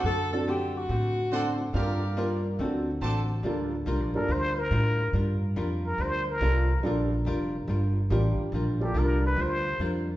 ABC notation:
X:1
M:4/4
L:1/8
Q:"Swing" 1/4=142
K:Gm
V:1 name="Trumpet section"
z6 [Acd^f] z | [GBdf]3 z3 [Acda] z | z8 | z8 |
z8 | z8 |]
V:2 name="Muted trumpet"
z8 | z8 | z3 B c B3 | z3 B c B3 |
z8 | z G B =B c2 z2 |]
V:3 name="Saxophone section"
A A G ^F4 z | z8 | z8 | z8 |
z8 | z8 |]
V:4 name="Grand piano"
z [CD^FA] z4 [CDFA] z | [B,DFA] z [B,DFB]2 [CD^FA] z3 | [G,B,DFA] z2 [G,B,DFA] z4 | z6 [G,B,DFA] z |
[G,B,DFA] z4 z [G,B,DFG]2- | [G,B,DFG] [G,B,DFA]3 z4 |]
V:5 name="Hollow-body jazz guitar"
[D,A,C^F] z [D,A,CF] z [D,A,CF] z [D,A,CF] z | [G,DFB] z [G,DFB] z [D,A,C^F] z [D,A,CF] z | [G,DFB] z [G,DFB] z [G,DFB] z [G,DFB] z | [G,DFB] z [G,DFB] z [G,DFB] z [G,DFB] z |
[G,DFB] z [G,DFB] z [G,DFB] z [G,DFB] z | [G,DFB] z [G,DFB] z [G,DFB] z [G,DFB] z |]
V:6 name="Upright bass" clef=bass
^F,,4 A,,4 | G,,4 D,,2 A,,,2 | D,,2 (3C,, B,,, G,,, D,,2 A,,2 | G,,2 F,,2 D,,2 C,,2 |
B,,,2 F,,,2 G,,,2 A,,, z | B,,,2 C,,2 D,,2 F,,2 |]